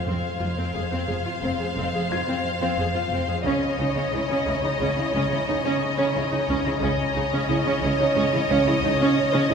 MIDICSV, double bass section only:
0, 0, Header, 1, 2, 480
1, 0, Start_track
1, 0, Tempo, 673401
1, 51, Time_signature, 5, 2, 24, 8
1, 6801, End_track
2, 0, Start_track
2, 0, Title_t, "Double bass section"
2, 0, Program_c, 0, 48
2, 47, Note_on_c, 0, 29, 52
2, 96, Note_off_c, 0, 29, 0
2, 289, Note_on_c, 0, 29, 39
2, 338, Note_off_c, 0, 29, 0
2, 531, Note_on_c, 0, 29, 36
2, 580, Note_off_c, 0, 29, 0
2, 773, Note_on_c, 0, 29, 36
2, 822, Note_off_c, 0, 29, 0
2, 1017, Note_on_c, 0, 29, 57
2, 1065, Note_off_c, 0, 29, 0
2, 1260, Note_on_c, 0, 29, 53
2, 1309, Note_off_c, 0, 29, 0
2, 1498, Note_on_c, 0, 29, 38
2, 1547, Note_off_c, 0, 29, 0
2, 1975, Note_on_c, 0, 29, 38
2, 2024, Note_off_c, 0, 29, 0
2, 2213, Note_on_c, 0, 29, 55
2, 2263, Note_off_c, 0, 29, 0
2, 2459, Note_on_c, 0, 37, 60
2, 2508, Note_off_c, 0, 37, 0
2, 2703, Note_on_c, 0, 37, 43
2, 2752, Note_off_c, 0, 37, 0
2, 2939, Note_on_c, 0, 37, 45
2, 2988, Note_off_c, 0, 37, 0
2, 3182, Note_on_c, 0, 37, 44
2, 3230, Note_off_c, 0, 37, 0
2, 3422, Note_on_c, 0, 37, 65
2, 3471, Note_off_c, 0, 37, 0
2, 3662, Note_on_c, 0, 37, 62
2, 3711, Note_off_c, 0, 37, 0
2, 3906, Note_on_c, 0, 37, 44
2, 3954, Note_off_c, 0, 37, 0
2, 4391, Note_on_c, 0, 37, 49
2, 4438, Note_off_c, 0, 37, 0
2, 4624, Note_on_c, 0, 37, 61
2, 4672, Note_off_c, 0, 37, 0
2, 4864, Note_on_c, 0, 37, 70
2, 4911, Note_off_c, 0, 37, 0
2, 5103, Note_on_c, 0, 37, 52
2, 5150, Note_off_c, 0, 37, 0
2, 5336, Note_on_c, 0, 37, 49
2, 5384, Note_off_c, 0, 37, 0
2, 5570, Note_on_c, 0, 37, 52
2, 5619, Note_off_c, 0, 37, 0
2, 5812, Note_on_c, 0, 37, 71
2, 5861, Note_off_c, 0, 37, 0
2, 6049, Note_on_c, 0, 37, 68
2, 6099, Note_off_c, 0, 37, 0
2, 6288, Note_on_c, 0, 37, 49
2, 6337, Note_off_c, 0, 37, 0
2, 6766, Note_on_c, 0, 37, 51
2, 6801, Note_off_c, 0, 37, 0
2, 6801, End_track
0, 0, End_of_file